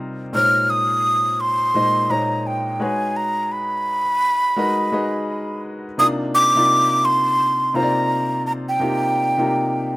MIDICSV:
0, 0, Header, 1, 3, 480
1, 0, Start_track
1, 0, Tempo, 705882
1, 222, Time_signature, 4, 2, 24, 8
1, 6778, End_track
2, 0, Start_track
2, 0, Title_t, "Flute"
2, 0, Program_c, 0, 73
2, 234, Note_on_c, 0, 89, 93
2, 475, Note_on_c, 0, 87, 97
2, 485, Note_off_c, 0, 89, 0
2, 953, Note_on_c, 0, 84, 94
2, 963, Note_off_c, 0, 87, 0
2, 1431, Note_on_c, 0, 82, 80
2, 1441, Note_off_c, 0, 84, 0
2, 1677, Note_on_c, 0, 79, 75
2, 1687, Note_off_c, 0, 82, 0
2, 1918, Note_on_c, 0, 80, 81
2, 1928, Note_off_c, 0, 79, 0
2, 2152, Note_on_c, 0, 82, 80
2, 2162, Note_off_c, 0, 80, 0
2, 2392, Note_on_c, 0, 83, 89
2, 2402, Note_off_c, 0, 82, 0
2, 3827, Note_off_c, 0, 83, 0
2, 4073, Note_on_c, 0, 87, 97
2, 4126, Note_off_c, 0, 87, 0
2, 4315, Note_on_c, 0, 86, 114
2, 4793, Note_on_c, 0, 84, 102
2, 4804, Note_off_c, 0, 86, 0
2, 5272, Note_on_c, 0, 82, 89
2, 5282, Note_off_c, 0, 84, 0
2, 5747, Note_off_c, 0, 82, 0
2, 5754, Note_on_c, 0, 82, 87
2, 5795, Note_off_c, 0, 82, 0
2, 5906, Note_on_c, 0, 79, 89
2, 6778, Note_off_c, 0, 79, 0
2, 6778, End_track
3, 0, Start_track
3, 0, Title_t, "Grand piano"
3, 0, Program_c, 1, 0
3, 0, Control_c, 1, 64, 127
3, 0, Note_on_c, 1, 48, 70
3, 0, Note_on_c, 1, 55, 66
3, 0, Note_on_c, 1, 63, 67
3, 0, Note_on_c, 1, 65, 69
3, 0, Note_on_c, 1, 70, 66
3, 0, Note_on_c, 1, 72, 83
3, 0, Note_on_c, 1, 75, 83
3, 133, Note_off_c, 1, 48, 0
3, 134, Note_off_c, 1, 55, 0
3, 136, Note_off_c, 1, 63, 0
3, 138, Note_off_c, 1, 65, 0
3, 139, Note_off_c, 1, 70, 0
3, 141, Note_off_c, 1, 72, 0
3, 224, Note_on_c, 1, 46, 64
3, 228, Note_on_c, 1, 56, 55
3, 231, Note_on_c, 1, 63, 58
3, 232, Control_c, 1, 64, 0
3, 235, Note_off_c, 1, 75, 0
3, 235, Note_on_c, 1, 72, 61
3, 237, Note_on_c, 1, 73, 67
3, 336, Control_c, 1, 64, 127
3, 1042, Note_off_c, 1, 46, 0
3, 1045, Note_off_c, 1, 56, 0
3, 1046, Note_off_c, 1, 63, 0
3, 1048, Note_off_c, 1, 72, 0
3, 1049, Note_off_c, 1, 73, 0
3, 1186, Note_on_c, 1, 46, 64
3, 1189, Note_on_c, 1, 56, 61
3, 1193, Note_on_c, 1, 63, 60
3, 1196, Note_on_c, 1, 72, 59
3, 1200, Note_on_c, 1, 75, 73
3, 1394, Note_off_c, 1, 46, 0
3, 1396, Note_off_c, 1, 56, 0
3, 1398, Note_off_c, 1, 63, 0
3, 1399, Note_off_c, 1, 72, 0
3, 1401, Note_off_c, 1, 75, 0
3, 1424, Note_on_c, 1, 46, 60
3, 1427, Note_on_c, 1, 56, 60
3, 1431, Note_on_c, 1, 63, 62
3, 1434, Note_on_c, 1, 72, 52
3, 1436, Note_on_c, 1, 73, 67
3, 1891, Note_off_c, 1, 56, 0
3, 1894, Note_off_c, 1, 63, 0
3, 1902, Note_on_c, 1, 56, 68
3, 1903, Note_off_c, 1, 46, 0
3, 1904, Note_on_c, 1, 63, 61
3, 1906, Note_off_c, 1, 73, 0
3, 1907, Note_on_c, 1, 66, 58
3, 1908, Note_off_c, 1, 72, 0
3, 1910, Control_c, 1, 64, 0
3, 1910, Note_on_c, 1, 68, 55
3, 1913, Note_on_c, 1, 71, 60
3, 1917, Note_on_c, 1, 73, 71
3, 2044, Control_c, 1, 64, 127
3, 2721, Note_off_c, 1, 56, 0
3, 2723, Note_off_c, 1, 63, 0
3, 2724, Note_off_c, 1, 66, 0
3, 2726, Note_off_c, 1, 68, 0
3, 2727, Note_off_c, 1, 71, 0
3, 2729, Note_off_c, 1, 73, 0
3, 3104, Note_on_c, 1, 56, 73
3, 3107, Note_on_c, 1, 63, 67
3, 3109, Note_on_c, 1, 66, 74
3, 3112, Note_on_c, 1, 70, 65
3, 3115, Note_on_c, 1, 71, 65
3, 3119, Note_on_c, 1, 75, 82
3, 3313, Note_off_c, 1, 56, 0
3, 3315, Note_off_c, 1, 63, 0
3, 3316, Note_off_c, 1, 66, 0
3, 3317, Note_off_c, 1, 70, 0
3, 3319, Note_off_c, 1, 71, 0
3, 3321, Note_off_c, 1, 75, 0
3, 3345, Note_on_c, 1, 56, 67
3, 3350, Note_on_c, 1, 63, 67
3, 3351, Note_on_c, 1, 66, 66
3, 3354, Note_on_c, 1, 68, 63
3, 3357, Note_on_c, 1, 71, 62
3, 3360, Note_on_c, 1, 75, 78
3, 3974, Note_off_c, 1, 56, 0
3, 3976, Note_off_c, 1, 63, 0
3, 3977, Note_off_c, 1, 66, 0
3, 3978, Note_off_c, 1, 68, 0
3, 3980, Note_off_c, 1, 71, 0
3, 3981, Note_off_c, 1, 75, 0
3, 4065, Note_on_c, 1, 48, 70
3, 4070, Control_c, 1, 64, 0
3, 4071, Note_on_c, 1, 58, 61
3, 4073, Note_on_c, 1, 63, 63
3, 4077, Note_on_c, 1, 65, 59
3, 4081, Note_on_c, 1, 62, 86
3, 4205, Control_c, 1, 64, 127
3, 4379, Note_off_c, 1, 48, 0
3, 4382, Note_off_c, 1, 58, 0
3, 4383, Note_off_c, 1, 63, 0
3, 4385, Note_off_c, 1, 65, 0
3, 4387, Note_off_c, 1, 62, 0
3, 4457, Note_on_c, 1, 48, 75
3, 4460, Note_on_c, 1, 58, 66
3, 4464, Note_on_c, 1, 63, 67
3, 4468, Note_on_c, 1, 65, 67
3, 4471, Note_on_c, 1, 74, 78
3, 5149, Note_off_c, 1, 48, 0
3, 5150, Note_off_c, 1, 58, 0
3, 5152, Note_off_c, 1, 63, 0
3, 5154, Note_off_c, 1, 65, 0
3, 5156, Note_off_c, 1, 74, 0
3, 5264, Note_on_c, 1, 48, 75
3, 5267, Note_on_c, 1, 58, 66
3, 5270, Note_on_c, 1, 63, 68
3, 5275, Note_on_c, 1, 65, 72
3, 5278, Note_on_c, 1, 72, 70
3, 5323, Note_on_c, 1, 74, 88
3, 5326, Note_off_c, 1, 72, 0
3, 5893, Note_off_c, 1, 48, 0
3, 5895, Note_off_c, 1, 58, 0
3, 5896, Note_off_c, 1, 63, 0
3, 5899, Note_off_c, 1, 65, 0
3, 5923, Note_off_c, 1, 74, 0
3, 5981, Note_on_c, 1, 48, 71
3, 5987, Note_on_c, 1, 58, 68
3, 5989, Note_on_c, 1, 63, 70
3, 5995, Note_on_c, 1, 65, 63
3, 5998, Note_on_c, 1, 67, 79
3, 6297, Note_off_c, 1, 48, 0
3, 6300, Note_off_c, 1, 58, 0
3, 6301, Note_off_c, 1, 63, 0
3, 6304, Note_off_c, 1, 65, 0
3, 6305, Note_off_c, 1, 67, 0
3, 6376, Note_on_c, 1, 48, 73
3, 6379, Note_on_c, 1, 58, 64
3, 6383, Note_on_c, 1, 63, 67
3, 6388, Note_on_c, 1, 65, 63
3, 6391, Note_on_c, 1, 67, 75
3, 6778, Note_off_c, 1, 48, 0
3, 6778, Note_off_c, 1, 58, 0
3, 6778, Note_off_c, 1, 63, 0
3, 6778, Note_off_c, 1, 65, 0
3, 6778, Note_off_c, 1, 67, 0
3, 6778, End_track
0, 0, End_of_file